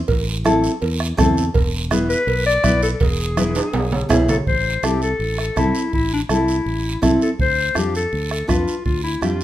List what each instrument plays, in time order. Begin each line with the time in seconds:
0.08 fingered electric bass A1, bombo low, cowbell, high conga, long guiro
0.44 nylon-string guitar C4 E4 A4, bombo rim, high conga, short guiro
0.64 short guiro
0.82 fingered electric bass E2, cowbell, high conga, long guiro
1.00 bombo rim
1.17 fingered electric bass E2, nylon-string guitar C4 E4 A4, bombo low, bombo rim, high conga, low conga, short guiro
1.37 short guiro
1.54 fingered electric bass E1, bombo low, cowbell, high conga, long guiro
1.90 nylon-string guitar B3 E4 G#4, bombo rim, high conga, short guiro
2.10 clarinet B4, short guiro
2.27 fingered electric bass B1, cowbell, high conga, long guiro
2.46 clarinet D5
2.63 fingered electric bass B1, nylon-string guitar B3 E4 B4, bombo low, bombo rim, high conga, short guiro
2.82 clarinet A4, short guiro
2.94 clarinet A4
3.00 fingered electric bass E1, clarinet G#4, bombo low, cowbell, high conga, long guiro
3.37 nylon-string guitar B3 E4 B4, bombo rim, high conga, high timbale, short guiro
3.55 high timbale, short guiro
3.73 fingered electric bass B1, cowbell, high conga, low timbale, long guiro
3.92 low conga, low timbale
4.09 fingered electric bass B1, nylon-string guitar B3 E4 G#4, bombo low, bombo rim, low timbale, short guiro
4.28 clarinet A4, low conga, low timbale, short guiro
4.47 fingered electric bass A1, clarinet C5, bombo low, high conga, long guiro
4.83 fingered electric bass C2, nylon-string guitar C4 E4 A4, clarinet G4, bombo rim, high conga, short guiro
5.02 clarinet A4, short guiro
5.19 fingered electric bass A1, high conga, long guiro
5.38 clarinet A4, bombo rim
5.56 fingered electric bass C2, nylon-string guitar C4 E4 A4, clarinet E4, bombo low, bombo rim, high conga, short guiro
5.75 short guiro
5.93 fingered electric bass A1, clarinet E4, bombo low, high conga, long guiro
6.14 clarinet D4
6.29 fingered electric bass C2, nylon-string guitar C4 E4 A4, clarinet E4, bombo rim, high conga, short guiro
6.48 short guiro
6.66 fingered electric bass A1, high conga, long guiro
7.02 fingered electric bass C2, nylon-string guitar C4 E4 A4, bombo low, bombo rim, high conga, short guiro
7.21 clarinet A4, short guiro
7.39 fingered electric bass D2, clarinet C5, bombo low, long guiro
7.74 fingered electric bass F2, nylon-string guitar D4 F4 A4, clarinet G4, bombo rim, high conga, short guiro
7.95 clarinet A4, short guiro
8.13 fingered electric bass D2, high conga, long guiro
8.31 clarinet A4, bombo rim
8.47 fingered electric bass F2, nylon-string guitar D4 F4 B4, clarinet F4, bombo low, bombo rim, high conga, short guiro
8.68 short guiro
8.85 fingered electric bass D2, clarinet F4, bombo low, high conga, long guiro
9.04 clarinet E4
9.21 fingered electric bass F2, nylon-string guitar D4 F4 G4, clarinet F4, bombo rim, high conga, short guiro
9.41 short guiro